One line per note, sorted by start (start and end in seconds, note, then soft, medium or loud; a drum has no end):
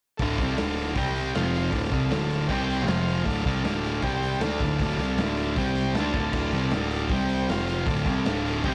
0.17 0.38 D1 medium
0.17 0.38 D2 loud
0.17 0.39 A2 loud
0.17 0.94 A4 medium
0.17 0.95 D5 medium
0.17 kick loud
0.17 open hi-hat medium
0.22 0.39 D3 loud
0.22 0.96 F5 medium
0.38 0.56 C2 loud
0.38 0.58 C3 medium
0.38 0.59 G3 medium
0.38 0.59 C4 loud
0.38 kick loud
0.38 open hi-hat medium
0.57 0.95 D1 loud
0.57 0.96 D2 medium
0.57 0.96 A2 loud
0.57 0.97 D3 loud
0.57 snare loud
0.57 open hi-hat medium
0.78 open hi-hat medium
0.94 1.32 C2 medium
0.94 1.35 C3 medium
0.94 1.35 G3 medium
0.94 1.35 C4 loud
0.94 1.34 G4 medium
0.94 1.34 C5 medium
0.94 1.36 G5 medium
0.94 kick loud
0.94 open hi-hat medium
1.15 open hi-hat medium
1.35 1.71 F1 medium
1.35 1.71 F2 medium
1.35 1.73 C3 medium
1.35 1.73 F3 loud
1.35 1.73 F4 medium
1.35 1.73 C5 medium
1.35 1.70 F5 medium
1.35 snare loud
1.35 open hi-hat medium
1.54 open hi-hat medium
1.70 1.90 D1 medium
1.70 1.91 D2 medium
1.70 1.92 A2 medium
1.70 1.92 D3 loud
1.70 2.47 A4 medium
1.70 2.47 D5 medium
1.70 2.47 F5 medium
1.70 kick loud
1.70 open hi-hat medium
1.84 snare soft
1.92 2.10 C2 loud
1.92 2.11 C3 loud
1.92 2.11 G3 medium
1.92 2.12 C4 loud
1.92 kick loud
1.92 open hi-hat medium
2.10 2.47 D1 loud
2.10 2.50 D2 medium
2.10 2.50 A2 medium
2.10 2.52 D3 loud
2.10 snare loud
2.10 open hi-hat medium
2.30 open hi-hat medium
2.47 2.84 C2 medium
2.47 2.89 C3 medium
2.47 2.89 G3 loud
2.47 2.87 G4 medium
2.47 2.85 C5 medium
2.47 2.88 G5 medium
2.47 kick loud
2.47 open hi-hat medium
2.52 2.89 C4 medium
2.70 open hi-hat medium
2.86 3.23 F1 medium
2.86 3.25 F2 loud
2.86 3.25 C3 medium
2.86 3.26 F3 loud
2.86 3.26 F4 medium
2.86 3.26 C5 medium
2.86 3.26 F5 medium
2.86 snare loud
2.86 open hi-hat medium
3.07 open hi-hat medium
3.25 3.44 D1 medium
3.25 3.44 D2 loud
3.25 3.45 A2 loud
3.25 3.45 D3 loud
3.25 4.01 A4 medium
3.25 4.02 D5 medium
3.25 4.02 F5 medium
3.25 kick loud
3.25 open hi-hat medium
3.45 3.63 C2 loud
3.45 3.64 C3 medium
3.45 3.65 G3 medium
3.45 3.65 C4 medium
3.45 kick medium
3.45 open hi-hat medium
3.64 4.00 D1 loud
3.64 4.02 D2 medium
3.64 4.03 A2 loud
3.64 4.03 D3 loud
3.64 snare loud
3.64 open hi-hat medium
3.84 open hi-hat medium
4.02 4.39 C2 medium
4.02 4.41 C3 medium
4.02 4.42 G3 medium
4.02 4.42 C4 loud
4.02 4.42 G4 medium
4.02 4.42 C5 medium
4.02 4.42 G5 medium
4.02 kick loud
4.02 open hi-hat medium
4.23 open hi-hat medium
4.40 4.59 D2 medium
4.40 5.54 A4 medium
4.40 5.56 D5 medium
4.40 5.36 F5 medium
4.40 snare loud
4.40 open hi-hat medium
4.44 4.62 D3 loud
4.44 4.62 A3 loud
4.44 4.63 D4 loud
4.60 4.78 D1 loud
4.60 4.80 D2 loud
4.60 kick loud
4.60 open hi-hat medium
4.65 4.81 A2 medium
4.65 4.82 D3 loud
4.79 4.96 D1 medium
4.79 5.00 D2 loud
4.79 5.00 A2 loud
4.79 kick loud
4.79 open hi-hat medium
4.84 5.01 D3 loud
4.97 5.16 C2 medium
4.97 open hi-hat medium
5.02 5.19 C3 medium
5.02 5.19 G3 loud
5.02 5.20 C4 loud
5.17 5.53 D1 loud
5.17 snare loud
5.17 open hi-hat medium
5.21 5.57 D2 medium
5.21 5.58 A2 medium
5.21 5.59 D3 medium
5.37 5.55 F5 medium
5.37 open hi-hat medium
5.56 5.93 C2 medium
5.56 5.95 C3 medium
5.56 5.96 G3 loud
5.56 5.96 C4 loud
5.56 5.95 G4 medium
5.56 5.95 C5 medium
5.56 5.93 G5 medium
5.56 kick loud
5.56 open hi-hat medium
5.75 snare soft
5.75 open hi-hat medium
5.93 6.12 D2 medium
5.93 7.08 A4 medium
5.93 7.08 D5 medium
5.93 6.32 A5 medium
5.93 snare loud
5.93 open hi-hat medium
5.99 6.15 D3 medium
5.99 6.16 A3 loud
5.99 6.16 D4 loud
5.99 7.10 F5 medium
6.13 6.32 D1 medium
6.13 6.33 D2 loud
6.13 6.34 A2 loud
6.13 6.34 D3 loud
6.13 kick loud
6.13 open hi-hat medium
6.33 6.51 D1 medium
6.33 6.53 D2 medium
6.33 6.53 A2 medium
6.33 6.54 D3 loud
6.33 kick loud
6.33 crash loud
6.51 6.70 C2 medium
6.51 6.72 C3 loud
6.51 6.72 G3 medium
6.51 6.73 C4 medium
6.51 open hi-hat medium
6.71 7.08 D1 medium
6.71 7.11 D2 medium
6.71 snare loud
6.71 open hi-hat medium
6.75 7.12 A2 medium
6.75 7.12 D3 loud
6.91 open hi-hat medium
7.09 7.46 C2 medium
7.09 7.50 C3 medium
7.09 7.50 G3 medium
7.09 7.49 G4 medium
7.09 7.48 C5 medium
7.09 kick loud
7.09 open hi-hat medium
7.13 7.50 C4 medium
7.13 7.51 G5 medium
7.29 open hi-hat medium
7.47 7.85 F1 loud
7.47 7.87 F4 medium
7.47 7.88 C5 medium
7.47 7.87 F5 medium
7.47 snare loud
7.47 open hi-hat medium
7.52 7.88 F2 medium
7.52 7.89 C3 medium
7.52 7.89 F3 loud
7.67 open hi-hat medium
7.86 8.05 D1 medium
7.86 8.07 D2 medium
7.86 8.07 A2 medium
7.86 8.08 D3 medium
7.86 8.63 A4 medium
7.86 8.63 D5 medium
7.86 8.63 F5 medium
7.86 kick loud
7.86 open hi-hat medium
8.05 8.24 C2 loud
8.05 8.26 C3 medium
8.05 8.26 G3 loud
8.05 8.27 C4 loud
8.05 kick loud
8.05 open hi-hat medium
8.26 8.62 D1 loud
8.26 8.65 D2 medium
8.26 8.66 A2 loud
8.26 8.67 D3 loud
8.26 snare loud
8.26 open hi-hat medium
8.46 open hi-hat medium
8.63 8.74 C2 medium
8.63 8.74 C3 medium
8.63 8.74 G3 loud
8.63 8.74 G4 medium
8.63 8.74 C5 medium
8.63 8.74 G5 medium
8.63 kick loud
8.63 open hi-hat medium
8.67 8.74 C4 medium